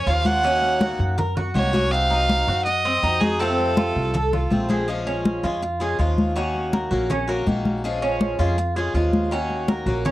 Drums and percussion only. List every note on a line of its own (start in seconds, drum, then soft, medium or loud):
0.07 high conga soft
0.25 high conga medium
0.44 high conga soft
0.62 high conga soft
0.81 high conga medium
1.00 high conga soft
1.18 high conga soft
1.18 low conga medium
1.37 high conga soft
1.37 low conga medium
1.56 high conga medium
1.74 high conga medium
2.11 high conga soft
2.29 high conga medium
2.48 high conga soft
2.66 high conga soft
2.85 high conga soft
3.03 high conga soft
3.21 high conga medium
3.41 high conga soft
3.59 high conga soft
3.77 high conga medium
3.96 high conga soft
4.15 high conga soft
4.15 low conga medium
4.33 high conga soft
4.33 low conga medium
4.52 high conga medium
4.70 high conga medium
4.89 high conga soft
5.07 high conga soft
5.25 high conga medium
5.44 high conga soft
5.62 high conga soft
5.81 high conga soft
5.99 high conga soft
6.18 high conga medium
6.37 high conga soft
6.55 high conga soft
6.73 high conga medium
6.92 high conga soft
7.10 high conga soft
7.10 low conga medium
7.29 high conga soft
7.47 high conga medium
7.65 high conga medium
7.84 high conga soft
8.02 high conga soft
8.21 high conga loud
8.39 high conga soft
8.58 high conga soft
8.76 high conga soft
8.95 high conga soft
9.13 high conga medium
9.31 high conga soft
9.50 high conga soft
9.68 high conga medium
9.87 high conga soft
10.06 high conga soft
10.06 low conga medium